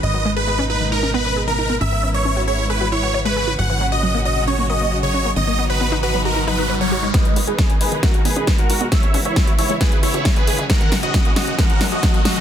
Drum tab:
HH |----------------|----------------|----------------|----------------|
SD |----------------|----------------|----------------|----------------|
BD |----------------|----------------|----------------|----------------|

HH |xxoxxxoxxxoxxxox|xxoxxxoxxxoxxxox|xxoxxxoxxxoxxxox|
SD |o---o---o---o---|o---o---o---o---|o-o-o-o-o-o-o-o-|
BD |o---o---o---o---|o---o---o---o---|o---o---o---o---|